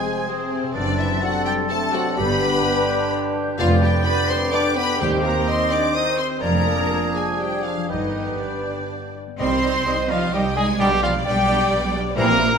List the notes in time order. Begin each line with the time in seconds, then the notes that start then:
Already playing: F2 C3 G#3 C4 G#4 C5 G#5 G#6
0.04 C6
0.16 G#5
0.27 C3 C4 G#4 C5
0.39 G#4
0.51 C4
0.63 C3
0.74 F#1 F#2 C3 D3 D4 A4 B4 D5 A6
0.86 F#3
0.98 E3 D4 E4 E5
1.21 C3 F#3 D4 F#4 A4 D5 F#5
1.33 A5
1.45 G3 G4 G5 C6
1.57 A5
1.68 C3 A3 D4 A4 D5 A5
1.93 F#3 F#4 A4 F#5
2.05 D4
2.17 G1 G2 D3 B3 D4 G4 B4 B5 G6
2.30 D3
2.42 D4
2.54 B4
2.65 B4 D5
2.77 G5
2.89 B5
3.00 G5
3.12 B4
3.24 B4
3.35 G4
3.47 D4
3.58 F1 F2 D3 F3 B3 F4 G4 D5 F5
3.70 F3
3.81 G3 D4 G4 G5
3.94 B4
4.04 B3 B4 D5 B5
4.18 G5
4.29 C4 C5 B5 C6
4.41 G5
4.52 D4 B4 D5 D6
4.65 B4
4.75 B3 G4 B4 B5
4.89 D4
5.00 D#2 D#3 G3 C4 G4 C5 G5 G6
5.12 C4
5.22 A#3 D#4 A#4 A#5
5.47 C4 C5 D#5 C6
5.59 G5
5.70 D4 D5 C6 D6
5.94 D#4 C5 D#5 D#6
6.18 C4 G4 C5 C6
6.30 D#4
6.41 F1 F2 F3 A#3 D4 G#4 A#4 D5 A#5 G#6
6.54 F3
6.66 D4
6.90 G#4
7.02 G#5
7.14 G#3 G#4 G#5 D6
7.27 G#5
7.39 G3 G4 C5 D5 G5
7.51 G#4
7.64 F3 D4 F4 F5
7.76 F3
7.89 G1 G2 D#3 G3 B3 D#4 G4 B4 D#5 G6
8.02 D3
8.15 B3
8.27 D5
8.39 D3 D4 B4 D5
8.52 G5
8.64 D6
8.77 G5
8.89 B4
9.02 D5
9.14 G4
9.27 B3
9.39 C2 C3 D#3 G3 C4 D#4 G4 C5 D#5 C6
9.51 G3 C4
9.63 D#3 G3 C4 D#4 D#5
9.74 G3 C4
9.85 C2 D#3 G3 D#4 G4 D#5
9.97 G3 C4
10.09 D#3 F3 G3 D#4 F4 D#5 F5
10.21 G3 C4
10.33 C2 D#3 G3 D#4 G4 C5 D#5 G5
10.45 G3 C4
10.55 D#3 G3 G#3 D#4 G#4 D#5 G#5
10.68 G3 C4
10.79 B1 B2 D3 G3 B3 D4 G4 D5 G5
10.91 G3 B3
11.02 F3 G3 B3 D4 F4 D5 F5
11.15 G3 B3
11.25 B1 G3 B3 D4 G4 D5 G5
11.38 G3 B3
11.47 G3 B3 D4 D5
11.61 G3 B3
11.70 B1 G3 B3 D4 G4 D5
11.84 G3 B3
11.93 G3 B3 D4 D5
12.06 G3 B3
12.15 A#1 A#2 E3 G3 A#3 C4 E4 G4 A#4 C5 A#5
12.30 C4 G4
12.39 E3 A#3 E4 C5
12.52 C4 G4